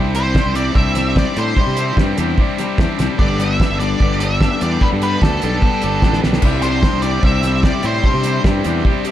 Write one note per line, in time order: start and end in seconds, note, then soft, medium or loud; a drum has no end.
0.00 0.34 C2 loud
0.00 0.14 C3 medium
0.00 0.14 G3 medium
0.00 0.15 C4 medium
0.00 0.16 D4 loud
0.00 0.15 E4 medium
0.00 0.16 G4 loud
0.14 0.33 C3 medium
0.14 0.34 G3 medium
0.14 0.35 C4 medium
0.14 0.36 D4 medium
0.14 0.35 E4 medium
0.14 0.35 G4 medium
0.14 0.57 C5 medium
0.14 closed hi-hat medium
0.33 0.53 C3 medium
0.33 0.54 G3 medium
0.33 0.55 C4 medium
0.33 0.56 D4 medium
0.33 0.56 E4 medium
0.33 0.56 G4 medium
0.33 kick medium
0.33 snare loud
0.46 0.70 C2 medium
0.54 0.73 C3 medium
0.54 0.74 G3 medium
0.54 0.74 C4 medium
0.54 0.76 D4 medium
0.54 0.75 E4 medium
0.54 0.76 G4 medium
0.54 0.75 D5 medium
0.54 closed hi-hat medium
0.74 1.23 C2 medium
0.74 0.93 C3 medium
0.74 0.95 G3 medium
0.74 0.95 C4 medium
0.74 0.95 D4 medium
0.74 0.95 E4 medium
0.74 0.97 G4 medium
0.74 1.17 E5 loud
0.74 kick loud
0.94 1.14 C3 medium
0.94 1.15 G3 medium
0.94 1.15 C4 medium
0.94 1.17 D4 medium
0.94 1.16 E4 medium
0.94 1.17 G4 medium
0.94 snare soft
0.94 closed hi-hat medium
1.15 1.33 C3 medium
1.15 1.35 G3 medium
1.15 1.35 C4 medium
1.15 1.38 D4 loud
1.15 1.36 E4 medium
1.15 1.37 G4 medium
1.15 1.38 D5 medium
1.15 kick loud
1.15 snare loud
1.35 1.53 A2 medium
1.35 1.54 C3 medium
1.35 1.56 G3 medium
1.35 1.56 C4 medium
1.35 1.56 E4 medium
1.35 1.58 G4 medium
1.35 1.94 C5 medium
1.35 closed hi-hat medium
1.39 1.58 D4 medium
1.56 1.75 C3 medium
1.56 1.77 G3 loud
1.56 1.76 C4 loud
1.56 1.79 D4 medium
1.56 1.77 E4 medium
1.56 1.78 G4 loud
1.56 kick medium
1.67 1.91 C3 medium
1.76 1.95 C3 medium
1.76 1.97 G3 medium
1.76 1.97 C4 medium
1.76 1.98 D4 medium
1.76 1.98 E4 medium
1.76 1.99 G4 medium
1.76 closed hi-hat medium
1.97 2.13 G2 medium
1.97 2.16 C3 medium
1.97 2.17 G3 medium
1.97 2.17 C4 medium
1.97 2.19 D4 medium
1.97 2.18 E4 medium
1.97 2.19 G4 medium
1.97 kick loud
1.97 snare loud
2.17 2.34 E2 medium
2.17 2.37 C3 medium
2.17 2.38 G3 medium
2.17 2.38 C4 medium
2.17 2.39 D4 medium
2.17 2.38 E4 loud
2.17 2.40 G4 loud
2.17 closed hi-hat medium
2.38 2.56 C3 medium
2.38 2.58 G3 medium
2.38 2.58 C4 medium
2.38 2.59 D4 medium
2.38 2.58 E4 medium
2.38 2.59 G4 medium
2.38 kick loud
2.58 2.77 C3 medium
2.58 2.78 G3 medium
2.58 2.78 C4 medium
2.58 2.79 D4 medium
2.58 2.79 E4 medium
2.58 2.80 G4 medium
2.58 snare soft
2.58 closed hi-hat medium
2.78 2.86 E2 medium
2.78 2.97 C3 medium
2.78 2.99 G3 medium
2.78 2.99 C4 medium
2.78 2.99 D4 loud
2.78 2.99 E4 medium
2.78 3.00 G4 medium
2.78 kick loud
2.78 snare medium
2.98 3.07 C2 medium
2.98 3.17 C3 medium
2.98 3.18 G3 medium
2.98 3.18 C4 medium
2.98 3.20 D4 medium
2.98 3.19 E4 loud
2.98 3.20 G4 medium
2.98 snare medium
2.98 closed hi-hat medium
3.17 3.59 G1 loud
3.17 3.38 G2 medium
3.17 3.38 D3 medium
3.17 3.39 G3 medium
3.17 3.40 B3 medium
3.17 3.40 D4 medium
3.17 3.41 G4 medium
3.17 3.40 A4 loud
3.17 3.40 D5 medium
3.17 kick loud
3.38 3.58 G2 medium
3.38 3.58 D3 medium
3.38 3.60 G3 medium
3.38 3.61 B3 medium
3.38 3.61 D4 medium
3.38 3.62 G4 medium
3.38 3.61 A4 medium
3.38 3.79 E5 loud
3.38 closed hi-hat medium
3.59 3.80 G2 medium
3.59 3.79 D3 medium
3.59 3.81 G3 medium
3.59 3.81 B3 medium
3.59 3.82 D4 medium
3.59 3.82 G4 medium
3.59 3.81 A4 medium
3.59 kick loud
3.59 snare loud
3.70 3.94 G1 medium
3.80 3.98 G2 medium
3.80 3.99 D3 medium
3.80 4.01 G3 medium
3.80 4.00 B3 medium
3.80 4.02 D4 loud
3.80 4.02 G4 medium
3.80 4.02 A4 loud
3.80 4.20 D5 medium
3.80 closed hi-hat medium
3.99 4.48 G1 medium
3.99 4.18 G2 medium
3.99 4.19 D3 medium
3.99 4.20 G3 medium
3.99 4.20 B3 medium
3.99 4.21 D4 medium
3.99 4.22 G4 medium
3.99 4.21 A4 medium
3.99 kick loud
4.19 4.39 G2 medium
4.19 4.39 D3 medium
4.19 4.41 G3 medium
4.19 4.40 B3 medium
4.19 4.42 D4 loud
4.19 4.42 G4 medium
4.19 4.43 A4 medium
4.19 4.62 E5 loud
4.19 closed hi-hat medium
4.40 4.59 G2 medium
4.40 4.60 D3 medium
4.40 4.61 G3 medium
4.40 4.61 B3 medium
4.40 4.62 D4 loud
4.40 4.63 G4 loud
4.40 4.62 A4 loud
4.40 kick loud
4.40 snare medium
4.60 4.77 E2 medium
4.60 4.79 G2 medium
4.60 4.80 D3 medium
4.60 4.81 G3 medium
4.60 4.81 B3 medium
4.60 4.82 D4 medium
4.60 4.82 G4 medium
4.60 4.83 A4 medium
4.60 4.82 D5 medium
4.60 closed hi-hat medium
4.80 4.99 G2 loud
4.80 4.99 D3 medium
4.80 5.01 G3 loud
4.80 5.00 B3 loud
4.80 5.02 D4 loud
4.80 5.02 G4 loud
4.80 4.87 B4 medium
4.80 kick loud
4.84 5.03 A4 loud
4.92 5.16 G2 medium
5.00 5.19 G2 medium
5.00 5.20 D3 medium
5.00 5.21 G3 medium
5.00 5.21 B3 medium
5.00 5.22 D4 medium
5.00 5.23 G4 medium
5.00 5.22 B4 medium
5.00 closed hi-hat medium
5.04 5.23 A4 medium
5.20 5.38 D2 medium
5.20 5.40 G2 medium
5.20 5.41 D3 medium
5.20 5.43 G3 medium
5.20 5.42 B3 medium
5.20 5.43 D4 medium
5.20 5.44 G4 medium
5.20 6.19 A4 medium
5.20 kick loud
5.20 snare medium
5.24 5.43 A4 loud
5.41 5.58 B1 medium
5.41 5.59 G2 medium
5.41 5.60 D3 medium
5.41 5.62 G3 medium
5.41 5.61 B3 medium
5.41 5.63 D4 medium
5.41 5.63 G4 medium
5.41 5.63 A4 medium
5.41 closed hi-hat medium
5.61 5.80 G2 medium
5.61 5.81 D3 medium
5.61 5.82 G3 medium
5.61 5.82 B3 medium
5.61 5.83 D4 medium
5.61 5.84 G4 medium
5.61 5.83 A4 medium
5.61 kick loud
5.81 6.01 G1 medium
5.81 6.01 G2 medium
5.81 6.02 D3 medium
5.81 6.03 G3 medium
5.81 6.03 B3 medium
5.81 6.04 D4 medium
5.81 6.05 G4 medium
5.81 6.03 A4 medium
5.81 closed hi-hat medium
6.02 6.20 A1 medium
6.02 6.21 G2 medium
6.02 6.22 D3 medium
6.02 6.23 G3 medium
6.02 6.23 B3 medium
6.02 6.24 D4 medium
6.02 6.25 G4 medium
6.02 6.23 A4 loud
6.02 kick loud
6.02 snare medium
6.13 snare medium
6.22 6.42 B1 medium
6.22 6.41 G2 medium
6.22 6.42 D3 medium
6.22 6.43 G3 medium
6.22 6.42 B3 medium
6.22 6.44 D4 medium
6.22 6.45 G4 medium
6.22 6.42 A4 medium
6.22 snare medium
6.33 snare medium
6.42 6.82 C2 loud
6.42 6.63 C3 medium
6.42 6.63 G3 medium
6.42 6.64 C4 medium
6.42 6.64 D4 medium
6.42 6.65 E4 loud
6.42 9.11 G4 medium
6.42 6.65 G4 medium
6.42 9.11 D5 medium
6.42 9.11 E5 medium
6.42 9.11 C6 medium
6.42 kick medium
6.42 crash medium
6.62 6.83 C3 medium
6.62 6.83 G3 medium
6.62 6.84 C4 medium
6.62 6.84 D4 medium
6.62 6.84 E4 medium
6.62 6.85 G4 medium
6.62 7.00 C5 medium
6.62 closed hi-hat medium
6.83 7.03 C3 medium
6.83 7.04 G3 medium
6.83 7.04 C4 medium
6.83 7.05 D4 medium
6.83 7.05 E4 medium
6.83 7.06 G4 medium
6.83 kick loud
6.83 snare medium
6.93 7.17 C2 medium
7.02 7.23 C3 medium
7.02 7.24 G3 medium
7.02 7.24 C4 medium
7.02 7.24 D4 medium
7.02 7.24 E4 medium
7.02 7.23 D5 medium
7.02 closed hi-hat medium
7.06 7.26 G4 medium
7.23 7.71 C2 medium
7.23 7.42 C3 medium
7.23 7.44 G3 medium
7.23 7.44 C4 medium
7.23 7.44 D4 medium
7.23 7.44 E4 medium
7.23 7.45 G4 loud
7.23 7.62 E5 loud
7.23 kick loud
7.43 7.63 C3 medium
7.43 7.65 G3 medium
7.43 7.65 C4 medium
7.43 7.64 D4 medium
7.43 7.65 E4 medium
7.43 7.66 G4 medium
7.43 snare soft
7.43 closed hi-hat medium
7.63 7.82 C3 medium
7.63 7.84 G3 medium
7.63 7.84 C4 medium
7.63 7.85 D4 loud
7.63 7.84 E4 medium
7.63 7.86 G4 medium
7.63 7.85 D5 medium
7.63 kick loud
7.63 snare loud
7.83 8.00 A2 medium
7.83 8.02 C3 medium
7.83 8.03 G3 medium
7.83 8.03 C4 medium
7.83 8.05 D4 medium
7.83 8.04 E4 medium
7.83 8.05 G4 medium
7.83 8.41 C5 medium
7.83 closed hi-hat medium
8.03 8.23 C3 medium
8.03 8.25 G3 medium
8.03 8.24 C4 medium
8.03 8.25 D4 medium
8.03 8.25 E4 medium
8.03 8.26 G4 loud
8.03 kick medium
8.14 8.38 C3 medium
8.24 8.43 C3 medium
8.24 8.44 G3 medium
8.24 8.44 C4 medium
8.24 8.46 D4 medium
8.24 8.45 E4 medium
8.24 8.46 G4 medium
8.24 closed hi-hat medium
8.44 8.61 G2 medium
8.44 8.63 C3 medium
8.44 8.64 G3 medium
8.44 8.65 C4 medium
8.44 8.66 D4 medium
8.44 8.65 E4 medium
8.44 8.66 G4 medium
8.44 kick loud
8.44 snare loud
8.64 8.81 E2 medium
8.64 8.83 C3 medium
8.64 8.85 G3 medium
8.64 8.85 C4 medium
8.64 8.85 D4 medium
8.64 8.85 E4 medium
8.64 8.87 G4 medium
8.64 closed hi-hat medium
8.84 9.04 C3 medium
8.84 9.06 G3 medium
8.84 9.05 C4 medium
8.84 9.07 D4 medium
8.84 9.06 E4 medium
8.84 9.07 G4 medium
8.84 kick loud
9.05 9.11 C3 medium
9.05 9.11 G3 medium
9.05 9.11 C4 medium
9.05 9.11 D4 medium
9.05 9.11 E4 medium
9.05 9.11 G4 medium
9.05 closed hi-hat medium